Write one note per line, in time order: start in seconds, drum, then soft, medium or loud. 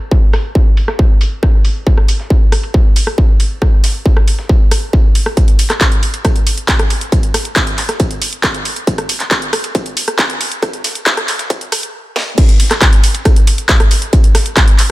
0.11 kick loud
0.11 ride medium
0.33 cross-stick medium
0.33 snare medium
0.33 open hi-hat loud
0.33 ride medium
0.55 kick loud
0.55 ride medium
0.77 open hi-hat medium
0.77 ride medium
0.88 cross-stick medium
0.88 snare medium
0.99 kick loud
0.99 ride medium
1.21 open hi-hat loud
1.21 ride medium
1.43 kick loud
1.43 cross-stick medium
1.43 ride medium
1.65 open hi-hat medium
1.65 ride medium
1.87 kick loud
1.87 ride medium
1.98 cross-stick medium
2.08 open hi-hat loud
2.08 ride medium
2.20 snare soft
2.30 kick loud
2.30 ride medium
2.52 cross-stick medium
2.52 open hi-hat medium
2.52 ride medium
2.63 ride soft
2.74 kick loud
2.74 ride medium
2.96 open hi-hat loud
2.96 ride medium
3.07 cross-stick medium
3.18 kick loud
3.18 ride medium
3.40 open hi-hat medium
3.40 ride medium
3.62 kick loud
3.62 cross-stick medium
3.62 ride medium
3.84 snare medium
3.84 open hi-hat loud
3.84 ride medium
4.06 kick loud
4.06 ride medium
4.17 cross-stick medium
4.28 open hi-hat medium
4.28 ride medium
4.39 snare medium
4.49 kick loud
4.49 ride medium
4.71 cross-stick medium
4.71 open hi-hat loud
4.71 ride medium
4.93 kick loud
4.93 ride medium
5.15 open hi-hat medium
5.15 ride medium
5.26 cross-stick medium
5.37 kick loud
5.37 closed hi-hat medium
5.37 ride medium
5.48 closed hi-hat medium
5.59 open hi-hat loud
5.59 ride medium
5.70 cross-stick medium
5.70 snare soft
5.70 clap soft
5.70 closed hi-hat medium
5.81 kick loud
5.81 snare loud
5.81 clap loud
5.81 closed hi-hat medium
5.81 ride medium
5.92 closed hi-hat medium
6.03 open hi-hat medium
6.03 ride medium
6.14 closed hi-hat soft
6.14 ride soft
6.25 kick loud
6.25 cross-stick medium
6.25 closed hi-hat medium
6.25 ride medium
6.36 closed hi-hat medium
6.47 open hi-hat loud
6.47 ride medium
6.58 closed hi-hat medium
6.68 kick loud
6.68 snare loud
6.68 clap loud
6.68 closed hi-hat medium
6.68 ride medium
6.79 cross-stick medium
6.79 closed hi-hat medium
6.90 open hi-hat medium
6.90 ride medium
7.01 closed hi-hat medium
7.12 kick loud
7.12 closed hi-hat medium
7.12 ride medium
7.23 closed hi-hat medium
7.34 cross-stick medium
7.34 snare medium
7.34 open hi-hat loud
7.34 ride medium
7.45 closed hi-hat medium
7.56 kick loud
7.56 snare loud
7.56 clap loud
7.56 closed hi-hat medium
7.56 ride medium
7.67 closed hi-hat medium
7.78 clap soft
7.78 open hi-hat loud
7.78 ride medium
7.89 cross-stick medium
7.89 snare medium
7.89 closed hi-hat medium
8.00 kick loud
8.00 closed hi-hat medium
8.00 ride medium
8.11 closed hi-hat medium
8.22 open hi-hat loud
8.22 ride medium
8.33 closed hi-hat medium
8.43 kick loud
8.43 cross-stick medium
8.43 snare loud
8.43 clap loud
8.43 closed hi-hat medium
8.43 ride medium
8.54 closed hi-hat medium
8.65 open hi-hat medium
8.65 ride medium
8.76 closed hi-hat medium
8.87 kick loud
8.87 closed hi-hat medium
8.87 ride medium
8.98 cross-stick medium
8.98 closed hi-hat medium
9.09 open hi-hat loud
9.09 ride medium
9.20 snare soft
9.20 clap soft
9.20 closed hi-hat medium
9.31 kick loud
9.31 snare loud
9.31 clap loud
9.31 closed hi-hat medium
9.31 ride medium
9.42 closed hi-hat medium
9.53 cross-stick medium
9.53 open hi-hat medium
9.53 ride medium
9.64 closed hi-hat medium
9.64 ride soft
9.75 kick loud
9.75 closed hi-hat medium
9.75 ride medium
9.86 closed hi-hat medium
9.97 open hi-hat loud
9.97 ride medium
10.08 cross-stick medium
10.08 closed hi-hat medium
10.19 kick loud
10.19 snare loud
10.19 clap loud
10.19 closed hi-hat medium
10.19 ride medium
10.30 closed hi-hat medium
10.41 open hi-hat loud
10.41 ride medium
10.52 closed hi-hat medium
10.63 kick loud
10.63 cross-stick medium
10.63 closed hi-hat medium
10.63 ride medium
10.73 closed hi-hat medium
10.84 snare medium
10.84 open hi-hat loud
10.84 ride medium
10.95 closed hi-hat medium
11.06 kick loud
11.06 snare loud
11.06 clap loud
11.06 closed hi-hat medium
11.06 ride medium
11.17 cross-stick medium
11.17 closed hi-hat medium
11.28 clap soft
11.28 open hi-hat loud
11.28 ride medium
11.39 snare medium
11.39 closed hi-hat medium
11.50 kick loud
11.50 closed hi-hat medium
11.50 ride medium
11.61 closed hi-hat medium
11.72 cross-stick medium
11.72 open hi-hat loud
11.72 ride medium
11.83 closed hi-hat medium
12.16 snare loud
12.38 kick loud
12.38 closed hi-hat medium
12.38 crash loud
12.38 ride medium
12.49 closed hi-hat medium
12.60 open hi-hat loud
12.60 ride medium
12.71 cross-stick medium
12.71 snare soft
12.71 clap soft
12.71 closed hi-hat medium
12.82 kick loud
12.82 snare loud
12.82 clap loud
12.82 closed hi-hat medium
12.82 ride medium
12.93 closed hi-hat medium
13.04 open hi-hat medium
13.04 ride medium
13.14 closed hi-hat medium
13.14 ride soft
13.25 kick loud
13.25 cross-stick medium
13.25 closed hi-hat medium
13.25 ride medium
13.36 closed hi-hat medium
13.47 open hi-hat loud
13.47 ride medium
13.58 closed hi-hat medium
13.69 kick loud
13.69 snare loud
13.69 clap loud
13.69 closed hi-hat medium
13.69 ride medium
13.80 cross-stick medium
13.80 closed hi-hat medium
13.91 open hi-hat loud
13.91 ride medium
14.02 closed hi-hat medium
14.13 kick loud
14.13 closed hi-hat medium
14.13 ride medium
14.24 closed hi-hat medium
14.35 cross-stick medium
14.35 snare medium
14.35 open hi-hat loud
14.35 ride medium
14.46 closed hi-hat medium
14.57 kick loud
14.57 snare loud
14.57 clap loud
14.57 closed hi-hat medium
14.57 ride medium
14.68 closed hi-hat medium
14.79 clap soft
14.79 open hi-hat loud
14.79 ride medium